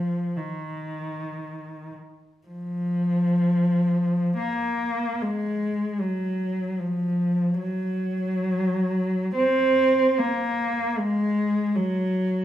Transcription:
0.00 0.34 F3 medium
0.36 1.94 D#3 soft
2.48 4.34 F3 medium
4.38 5.23 A#3 medium
5.22 6.01 G#3 medium
6.01 6.80 F#3 medium
6.80 7.60 F3 medium
7.60 9.31 F#3 medium
9.35 10.17 C4 medium
10.19 10.98 A#3 medium
10.98 11.76 G#3 medium
11.76 12.45 F#3 medium

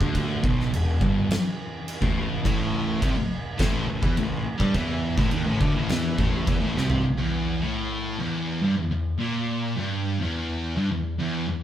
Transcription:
0.01 0.41 D2 loud
0.01 0.42 D3 loud
0.01 kick loud
0.15 kick medium
0.15 crash medium
0.42 0.71 B1 medium
0.42 0.71 B2 loud
0.42 kick loud
0.60 snare soft
0.72 0.99 E1 medium
0.72 0.95 E2 medium
0.72 crash medium
1.01 1.28 G1 loud
1.01 1.29 G2 loud
1.01 kick loud
1.31 snare loud
1.31 crash medium
1.88 crash medium
2.01 2.42 A1 loud
2.01 2.43 A2 loud
2.01 kick loud
2.44 2.99 A1 medium
2.44 3.01 A2 loud
2.44 kick loud
2.44 crash medium
3.01 3.16 C2 medium
3.01 3.15 C3 loud
3.01 kick loud
3.01 crash medium
3.17 muted distorted electric guitar stroke medium
3.17 muted picked electric bass stroke soft
3.59 3.87 A1 loud
3.59 3.87 A2 loud
3.59 kick loud
3.59 snare loud
3.59 crash medium
3.88 4.02 A1 medium
3.88 4.02 A2 medium
4.02 4.16 E2 loud
4.02 4.16 E3 loud
4.02 kick loud
4.17 4.45 A1 medium
4.17 4.40 A2 medium
4.17 crash medium
4.60 4.74 G2 loud
4.60 4.74 G3 loud
4.60 kick loud
4.74 5.15 E2 medium
4.74 5.17 E3 loud
4.74 kick medium
4.74 crash medium
5.18 5.31 A1 loud
5.18 5.30 A2 loud
5.18 kick loud
5.18 snare soft
5.31 5.45 D#2 medium
5.31 5.45 D#3 loud
5.31 crash medium
5.46 5.60 A1 medium
5.46 5.60 A2 loud
5.61 5.74 D2 loud
5.61 5.74 D3 loud
5.61 kick loud
5.75 5.88 A1 medium
5.75 5.89 A2 loud
5.89 6.16 E2 loud
5.89 6.18 E3 loud
5.89 snare loud
5.89 crash medium
6.18 6.45 A1 medium
6.18 6.47 A2 loud
6.18 kick loud
6.47 6.61 E2 medium
6.47 6.61 E3 loud
6.47 kick loud
6.47 crash medium
6.61 6.75 A1 loud
6.61 6.76 A2 loud
6.75 7.02 C2 loud
6.75 7.04 C3 loud
6.75 snare medium
6.90 floor tom loud
7.20 7.61 E2 loud
7.63 8.19 A2 loud
8.20 8.62 E2 loud
8.63 8.76 G2 loud
8.78 8.90 E2 medium
8.91 9.14 E2 medium
9.18 9.75 A#2 loud
9.77 10.19 G2 loud
10.20 10.76 E2 loud
10.77 10.90 G2 loud
10.91 11.14 E2 medium
11.19 11.46 E2 loud
11.48 11.62 E2 medium

